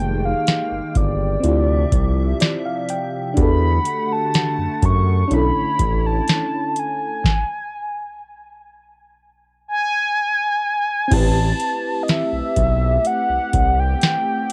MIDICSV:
0, 0, Header, 1, 6, 480
1, 0, Start_track
1, 0, Tempo, 967742
1, 1672, Time_signature, 4, 2, 24, 8
1, 7204, End_track
2, 0, Start_track
2, 0, Title_t, "Soft synth lead"
2, 0, Program_c, 0, 80
2, 0, Note_on_c, 0, 79, 101
2, 124, Note_on_c, 0, 77, 89
2, 131, Note_off_c, 0, 79, 0
2, 481, Note_on_c, 0, 74, 88
2, 488, Note_off_c, 0, 77, 0
2, 1437, Note_off_c, 0, 74, 0
2, 1685, Note_on_c, 0, 83, 103
2, 2045, Note_on_c, 0, 81, 99
2, 2053, Note_off_c, 0, 83, 0
2, 2407, Note_on_c, 0, 85, 103
2, 2414, Note_off_c, 0, 81, 0
2, 2647, Note_on_c, 0, 83, 113
2, 2654, Note_off_c, 0, 85, 0
2, 3007, Note_on_c, 0, 81, 104
2, 3014, Note_off_c, 0, 83, 0
2, 3369, Note_on_c, 0, 80, 97
2, 3377, Note_off_c, 0, 81, 0
2, 4321, Note_off_c, 0, 80, 0
2, 4802, Note_on_c, 0, 80, 127
2, 5522, Note_on_c, 0, 81, 125
2, 5530, Note_off_c, 0, 80, 0
2, 5967, Note_on_c, 0, 75, 73
2, 5975, Note_off_c, 0, 81, 0
2, 6002, Note_on_c, 0, 76, 108
2, 6010, Note_off_c, 0, 75, 0
2, 6481, Note_on_c, 0, 78, 118
2, 6489, Note_off_c, 0, 76, 0
2, 6842, Note_on_c, 0, 79, 119
2, 6849, Note_off_c, 0, 78, 0
2, 7204, Note_off_c, 0, 79, 0
2, 7204, End_track
3, 0, Start_track
3, 0, Title_t, "FM electric piano"
3, 0, Program_c, 1, 5
3, 0, Control_c, 1, 64, 127
3, 0, Note_on_c, 1, 58, 65
3, 0, Note_on_c, 1, 63, 62
3, 0, Note_on_c, 1, 67, 58
3, 0, Note_on_c, 1, 68, 71
3, 685, Note_off_c, 1, 58, 0
3, 692, Note_off_c, 1, 63, 0
3, 696, Note_on_c, 1, 60, 66
3, 699, Note_off_c, 1, 67, 0
3, 706, Note_off_c, 1, 68, 0
3, 711, Note_on_c, 1, 64, 59
3, 720, Control_c, 1, 64, 0
3, 724, Note_on_c, 1, 65, 61
3, 737, Note_on_c, 1, 67, 73
3, 814, Control_c, 1, 64, 127
3, 1197, Note_on_c, 1, 74, 76
3, 1306, Note_off_c, 1, 74, 0
3, 1318, Note_on_c, 1, 77, 72
3, 1427, Note_off_c, 1, 77, 0
3, 1438, Note_on_c, 1, 79, 72
3, 1645, Note_off_c, 1, 60, 0
3, 1652, Note_off_c, 1, 64, 0
3, 1656, Note_on_c, 1, 62, 66
3, 1659, Note_off_c, 1, 65, 0
3, 1659, Note_off_c, 1, 79, 0
3, 1666, Note_off_c, 1, 67, 0
3, 1670, Note_on_c, 1, 66, 64
3, 1678, Control_c, 1, 64, 0
3, 1684, Note_on_c, 1, 67, 57
3, 1698, Note_on_c, 1, 69, 73
3, 1768, Control_c, 1, 64, 127
3, 2605, Note_off_c, 1, 62, 0
3, 2612, Note_off_c, 1, 66, 0
3, 2618, Note_on_c, 1, 61, 71
3, 2619, Note_off_c, 1, 67, 0
3, 2626, Note_off_c, 1, 69, 0
3, 2631, Note_on_c, 1, 62, 61
3, 2638, Control_c, 1, 64, 0
3, 2644, Note_on_c, 1, 64, 64
3, 2659, Note_on_c, 1, 69, 73
3, 2733, Control_c, 1, 64, 127
3, 3566, Note_off_c, 1, 61, 0
3, 3572, Note_off_c, 1, 62, 0
3, 3579, Note_off_c, 1, 64, 0
3, 3587, Note_off_c, 1, 69, 0
3, 3599, Control_c, 1, 64, 0
3, 5495, Note_on_c, 1, 60, 68
3, 5509, Note_on_c, 1, 64, 60
3, 5523, Note_on_c, 1, 67, 63
3, 5536, Note_on_c, 1, 71, 74
3, 5606, Control_c, 1, 64, 127
3, 7204, Note_off_c, 1, 60, 0
3, 7204, Note_off_c, 1, 64, 0
3, 7204, Note_off_c, 1, 67, 0
3, 7204, Note_off_c, 1, 71, 0
3, 7204, End_track
4, 0, Start_track
4, 0, Title_t, "Analog synth pad"
4, 0, Program_c, 2, 89
4, 0, Note_on_c, 2, 51, 85
4, 0, Note_on_c, 2, 56, 76
4, 0, Note_on_c, 2, 58, 76
4, 0, Note_on_c, 2, 79, 95
4, 703, Note_off_c, 2, 51, 0
4, 703, Note_off_c, 2, 56, 0
4, 703, Note_off_c, 2, 58, 0
4, 703, Note_off_c, 2, 79, 0
4, 714, Note_on_c, 2, 48, 81
4, 715, Note_on_c, 2, 53, 76
4, 715, Note_on_c, 2, 76, 96
4, 1664, Note_off_c, 2, 48, 0
4, 1664, Note_off_c, 2, 53, 0
4, 1664, Note_off_c, 2, 76, 0
4, 1673, Note_on_c, 2, 50, 82
4, 1673, Note_on_c, 2, 57, 77
4, 1673, Note_on_c, 2, 78, 93
4, 2623, Note_off_c, 2, 78, 0
4, 2633, Note_on_c, 2, 64, 90
4, 2634, Note_on_c, 2, 73, 76
4, 3574, Note_off_c, 2, 50, 0
4, 3574, Note_off_c, 2, 57, 0
4, 3583, Note_off_c, 2, 64, 0
4, 3583, Note_off_c, 2, 73, 0
4, 5514, Note_on_c, 2, 57, 80
4, 5514, Note_on_c, 2, 60, 87
4, 5515, Note_on_c, 2, 67, 92
4, 7204, Note_off_c, 2, 57, 0
4, 7204, Note_off_c, 2, 60, 0
4, 7204, Note_off_c, 2, 67, 0
4, 7204, End_track
5, 0, Start_track
5, 0, Title_t, "Analog synth bass"
5, 0, Program_c, 3, 38
5, 0, Note_on_c, 3, 29, 115
5, 164, Note_off_c, 3, 29, 0
5, 353, Note_on_c, 3, 31, 49
5, 400, Note_off_c, 3, 31, 0
5, 472, Note_on_c, 3, 31, 95
5, 678, Note_off_c, 3, 31, 0
5, 712, Note_on_c, 3, 38, 104
5, 918, Note_off_c, 3, 38, 0
5, 953, Note_on_c, 3, 36, 85
5, 1159, Note_off_c, 3, 36, 0
5, 1672, Note_on_c, 3, 40, 111
5, 1878, Note_off_c, 3, 40, 0
5, 2272, Note_on_c, 3, 42, 49
5, 2320, Note_off_c, 3, 42, 0
5, 2392, Note_on_c, 3, 42, 99
5, 2598, Note_off_c, 3, 42, 0
5, 2632, Note_on_c, 3, 35, 108
5, 2735, Note_off_c, 3, 35, 0
5, 2752, Note_on_c, 3, 33, 50
5, 2800, Note_off_c, 3, 33, 0
5, 2872, Note_on_c, 3, 33, 89
5, 3078, Note_off_c, 3, 33, 0
5, 5512, Note_on_c, 3, 33, 113
5, 5718, Note_off_c, 3, 33, 0
5, 6113, Note_on_c, 3, 35, 51
5, 6160, Note_off_c, 3, 35, 0
5, 6232, Note_on_c, 3, 35, 94
5, 6438, Note_off_c, 3, 35, 0
5, 6592, Note_on_c, 3, 36, 47
5, 6640, Note_off_c, 3, 36, 0
5, 6712, Note_on_c, 3, 36, 96
5, 6918, Note_off_c, 3, 36, 0
5, 7204, End_track
6, 0, Start_track
6, 0, Title_t, "Drums"
6, 233, Note_on_c, 9, 42, 58
6, 238, Note_on_c, 9, 38, 105
6, 283, Note_off_c, 9, 42, 0
6, 287, Note_off_c, 9, 38, 0
6, 473, Note_on_c, 9, 36, 85
6, 473, Note_on_c, 9, 42, 68
6, 522, Note_off_c, 9, 36, 0
6, 522, Note_off_c, 9, 42, 0
6, 713, Note_on_c, 9, 42, 70
6, 763, Note_off_c, 9, 42, 0
6, 953, Note_on_c, 9, 36, 93
6, 954, Note_on_c, 9, 42, 77
6, 1003, Note_off_c, 9, 36, 0
6, 1003, Note_off_c, 9, 42, 0
6, 1192, Note_on_c, 9, 42, 63
6, 1201, Note_on_c, 9, 38, 118
6, 1242, Note_off_c, 9, 42, 0
6, 1251, Note_off_c, 9, 38, 0
6, 1432, Note_on_c, 9, 42, 73
6, 1481, Note_off_c, 9, 42, 0
6, 1671, Note_on_c, 9, 42, 68
6, 1672, Note_on_c, 9, 36, 112
6, 1721, Note_off_c, 9, 42, 0
6, 1722, Note_off_c, 9, 36, 0
6, 1911, Note_on_c, 9, 42, 69
6, 1961, Note_off_c, 9, 42, 0
6, 2153, Note_on_c, 9, 42, 61
6, 2158, Note_on_c, 9, 38, 116
6, 2202, Note_off_c, 9, 42, 0
6, 2207, Note_off_c, 9, 38, 0
6, 2393, Note_on_c, 9, 36, 83
6, 2393, Note_on_c, 9, 42, 66
6, 2442, Note_off_c, 9, 36, 0
6, 2443, Note_off_c, 9, 42, 0
6, 2633, Note_on_c, 9, 42, 66
6, 2683, Note_off_c, 9, 42, 0
6, 2872, Note_on_c, 9, 36, 94
6, 2873, Note_on_c, 9, 42, 83
6, 2922, Note_off_c, 9, 36, 0
6, 2922, Note_off_c, 9, 42, 0
6, 3113, Note_on_c, 9, 42, 64
6, 3121, Note_on_c, 9, 38, 113
6, 3162, Note_off_c, 9, 42, 0
6, 3171, Note_off_c, 9, 38, 0
6, 3353, Note_on_c, 9, 42, 77
6, 3402, Note_off_c, 9, 42, 0
6, 3592, Note_on_c, 9, 36, 108
6, 3599, Note_on_c, 9, 38, 90
6, 3642, Note_off_c, 9, 36, 0
6, 3649, Note_off_c, 9, 38, 0
6, 5512, Note_on_c, 9, 36, 114
6, 5513, Note_on_c, 9, 42, 73
6, 5513, Note_on_c, 9, 49, 102
6, 5562, Note_off_c, 9, 36, 0
6, 5563, Note_off_c, 9, 42, 0
6, 5563, Note_off_c, 9, 49, 0
6, 5752, Note_on_c, 9, 42, 70
6, 5802, Note_off_c, 9, 42, 0
6, 5993, Note_on_c, 9, 42, 61
6, 5998, Note_on_c, 9, 38, 119
6, 6042, Note_off_c, 9, 42, 0
6, 6047, Note_off_c, 9, 38, 0
6, 6232, Note_on_c, 9, 36, 80
6, 6232, Note_on_c, 9, 42, 66
6, 6281, Note_off_c, 9, 42, 0
6, 6282, Note_off_c, 9, 36, 0
6, 6472, Note_on_c, 9, 42, 74
6, 6521, Note_off_c, 9, 42, 0
6, 6711, Note_on_c, 9, 42, 85
6, 6712, Note_on_c, 9, 36, 99
6, 6761, Note_off_c, 9, 42, 0
6, 6762, Note_off_c, 9, 36, 0
6, 6951, Note_on_c, 9, 42, 64
6, 6959, Note_on_c, 9, 38, 120
6, 7000, Note_off_c, 9, 42, 0
6, 7009, Note_off_c, 9, 38, 0
6, 7204, End_track
0, 0, End_of_file